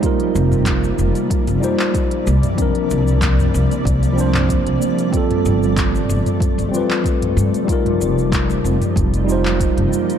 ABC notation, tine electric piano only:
X:1
M:4/4
L:1/8
Q:1/4=94
K:Fmix
V:1 name="Tine electric piano"
[G,EFB]4- [G,EFB] [G,EFc]2 z | [F,CDB]4- [F,CDB] [F,CDc]3 | [G,CFA]4- [G,CFA] [G,CF=B]3 | [G,EFB]4- [G,EFB] [G,EFc]3 |]